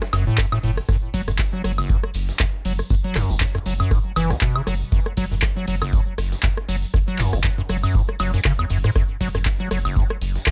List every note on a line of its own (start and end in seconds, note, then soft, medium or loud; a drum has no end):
0.02 cross-stick medium
0.02 snare loud
0.02 closed hi-hat medium
0.13 0.29 F#1 loud
0.13 0.25 F#2 medium
0.13 snare loud
0.13 closed hi-hat medium
0.13 open hi-hat loud
0.13 high woodblock medium
0.27 0.40 A2 medium
0.38 0.46 F#2 medium
0.38 kick loud
0.38 cross-stick medium
0.38 clap loud
0.38 open hi-hat medium
0.52 0.58 A2 loud
0.52 snare loud
0.52 closed hi-hat medium
0.52 high woodblock medium
0.63 0.80 F#1 medium
0.63 0.71 A2 medium
0.63 open hi-hat loud
0.77 cross-stick medium
0.77 open hi-hat medium
0.89 0.96 F#2 medium
0.89 kick loud
0.89 cross-stick medium
0.89 closed hi-hat medium
0.89 tambourine soft
1.14 1.22 F#1 loud
1.14 1.22 F#3 loud
1.14 kick medium
1.14 closed hi-hat medium
1.14 open hi-hat loud
1.14 tambourine loud
1.28 1.42 F#1 medium
1.28 1.32 F#2 medium
1.28 cross-stick medium
1.28 tambourine medium
1.39 kick loud
1.39 snare loud
1.39 clap loud
1.39 closed hi-hat medium
1.39 tambourine soft
1.53 1.62 F#3 medium
1.53 snare soft
1.64 1.81 F#1 medium
1.64 1.72 F#3 medium
1.64 cross-stick medium
1.64 closed hi-hat medium
1.64 open hi-hat loud
1.64 tambourine medium
1.78 1.91 F#1 medium
1.78 tambourine soft
1.78 high woodblock medium
1.90 1.97 G#2 medium
1.90 kick loud
1.90 closed hi-hat medium
1.90 tambourine soft
2.03 cross-stick medium
2.14 2.31 F#1 loud
2.14 closed hi-hat medium
2.14 open hi-hat loud
2.14 tambourine medium
2.29 snare medium
2.29 tambourine medium
2.39 2.45 F#2 loud
2.39 kick loud
2.39 cross-stick medium
2.39 snare loud
2.39 clap loud
2.39 closed hi-hat medium
2.65 2.82 F#1 medium
2.65 2.73 F#3 medium
2.65 closed hi-hat medium
2.65 open hi-hat loud
2.65 tambourine medium
2.79 cross-stick medium
2.79 tambourine medium
2.90 2.95 F#2 loud
2.90 kick loud
2.90 closed hi-hat medium
2.90 tambourine soft
3.04 3.17 F#3 medium
3.04 open hi-hat medium
3.15 3.24 F#1 loud
3.15 3.31 F#2 medium
3.15 cross-stick medium
3.15 clap medium
3.15 closed hi-hat medium
3.15 open hi-hat loud
3.15 tambourine medium
3.30 3.36 F#1 medium
3.30 3.44 F#1 medium
3.30 tambourine medium
3.40 3.45 F#2 loud
3.40 kick loud
3.40 snare loud
3.40 clap loud
3.40 closed hi-hat medium
3.55 3.58 F#2 loud
3.55 cross-stick medium
3.66 3.82 F#1 medium
3.66 3.74 F#3 medium
3.66 open hi-hat loud
3.66 open hi-hat medium
3.66 tambourine loud
3.80 3.93 F#2 medium
3.80 tambourine medium
3.80 high woodblock medium
3.91 3.99 G#2 medium
3.91 kick loud
3.91 cross-stick medium
3.91 closed hi-hat medium
3.91 tambourine soft
4.16 4.33 F#1 loud
4.16 4.32 E3 loud
4.16 snare medium
4.16 closed hi-hat medium
4.16 open hi-hat loud
4.16 tambourine loud
4.16 high woodblock medium
4.30 4.37 F#1 medium
4.30 cross-stick medium
4.30 snare soft
4.30 tambourine medium
4.41 4.57 B2 medium
4.41 kick loud
4.41 snare loud
4.41 clap loud
4.41 closed hi-hat medium
4.41 tambourine soft
4.56 4.62 C#3 loud
4.56 closed hi-hat soft
4.56 high woodblock medium
4.67 4.83 F#1 medium
4.67 4.75 F#3 medium
4.67 cross-stick medium
4.67 closed hi-hat medium
4.67 open hi-hat loud
4.67 tambourine loud
4.81 tambourine medium
4.92 5.00 F#2 medium
4.92 kick loud
4.92 closed hi-hat medium
4.92 tambourine soft
5.06 cross-stick medium
5.17 5.26 F#1 loud
5.17 5.25 F#3 loud
5.17 kick medium
5.17 closed hi-hat medium
5.17 open hi-hat loud
5.17 tambourine medium
5.31 5.45 F#1 medium
5.31 5.35 F#2 medium
5.31 tambourine medium
5.42 kick loud
5.42 cross-stick medium
5.42 snare loud
5.42 clap loud
5.42 closed hi-hat medium
5.42 tambourine soft
5.57 5.66 F#3 medium
5.57 snare soft
5.67 5.84 F#1 medium
5.67 5.75 F#3 medium
5.67 closed hi-hat medium
5.67 open hi-hat loud
5.67 tambourine loud
5.82 5.94 F#1 medium
5.82 cross-stick medium
5.82 tambourine medium
5.82 high woodblock medium
5.93 6.01 G#2 medium
5.93 kick loud
5.93 closed hi-hat medium
5.93 tambourine soft
6.18 6.34 F#1 loud
6.18 cross-stick medium
6.18 closed hi-hat medium
6.18 open hi-hat loud
6.18 tambourine loud
6.32 snare medium
6.32 tambourine medium
6.43 6.48 F#2 loud
6.43 kick loud
6.43 snare loud
6.43 clap loud
6.43 closed hi-hat medium
6.43 tambourine soft
6.57 cross-stick medium
6.69 6.85 F#1 medium
6.69 6.76 F#3 medium
6.69 closed hi-hat medium
6.69 open hi-hat loud
6.69 tambourine loud
6.82 tambourine medium
6.94 6.98 F#2 loud
6.94 kick loud
6.94 cross-stick medium
6.94 closed hi-hat medium
6.94 tambourine soft
7.08 7.20 F#3 medium
7.08 open hi-hat medium
7.19 7.27 F#1 loud
7.19 7.34 F#2 medium
7.19 clap medium
7.19 closed hi-hat medium
7.19 open hi-hat loud
7.19 tambourine medium
7.33 7.39 F#1 medium
7.33 7.47 F#1 medium
7.33 cross-stick medium
7.33 tambourine medium
7.44 7.49 F#2 loud
7.44 kick loud
7.44 snare loud
7.44 clap loud
7.44 closed hi-hat medium
7.44 tambourine soft
7.58 7.62 F#2 loud
7.69 7.86 F#1 medium
7.69 7.77 F#3 medium
7.69 cross-stick medium
7.69 open hi-hat loud
7.69 open hi-hat medium
7.69 tambourine loud
7.83 7.96 F#2 medium
7.83 tambourine medium
7.83 high woodblock medium
7.95 8.02 G#2 medium
7.95 kick loud
7.95 closed hi-hat medium
7.95 tambourine soft
8.09 cross-stick medium
8.19 8.36 F#1 medium
8.19 8.31 F#3 medium
8.19 snare medium
8.19 closed hi-hat medium
8.19 open hi-hat loud
8.19 tambourine medium
8.19 high woodblock medium
8.34 8.40 F#2 medium
8.34 snare soft
8.34 tambourine medium
8.45 8.53 C#3 loud
8.45 kick loud
8.45 cross-stick medium
8.45 snare loud
8.45 clap loud
8.45 closed hi-hat medium
8.45 tambourine soft
8.59 8.65 E2 loud
8.59 closed hi-hat soft
8.59 high woodblock medium
8.70 8.87 F#1 loud
8.70 8.78 F#2 medium
8.70 closed hi-hat medium
8.70 open hi-hat loud
8.70 tambourine medium
8.84 8.90 G#2 loud
8.84 cross-stick medium
8.84 tambourine medium
8.95 9.03 F#2 medium
8.95 kick loud
8.95 cross-stick medium
8.95 closed hi-hat medium
8.95 tambourine soft
9.21 9.29 F#1 loud
9.21 9.28 F#3 loud
9.21 kick medium
9.21 closed hi-hat medium
9.21 open hi-hat loud
9.21 tambourine medium
9.34 9.49 F#1 medium
9.34 9.38 F#2 medium
9.34 cross-stick medium
9.34 tambourine soft
9.45 kick loud
9.45 snare loud
9.45 clap loud
9.45 closed hi-hat medium
9.45 tambourine soft
9.60 9.69 F#3 medium
9.60 snare soft
9.71 9.87 F#1 medium
9.71 9.79 F#3 medium
9.71 cross-stick medium
9.71 closed hi-hat medium
9.71 open hi-hat loud
9.71 tambourine medium
9.85 9.98 F#1 medium
9.85 tambourine medium
9.85 high woodblock medium
9.96 10.04 G#2 medium
9.96 kick loud
9.96 closed hi-hat medium
9.96 tambourine soft
10.10 cross-stick medium
10.21 10.38 F#1 loud
10.21 closed hi-hat medium
10.21 open hi-hat loud
10.21 tambourine medium
10.35 snare medium
10.35 tambourine medium
10.46 10.51 F#2 loud
10.46 kick loud
10.46 cross-stick medium
10.46 snare loud
10.46 clap loud
10.46 closed hi-hat medium
10.46 tambourine soft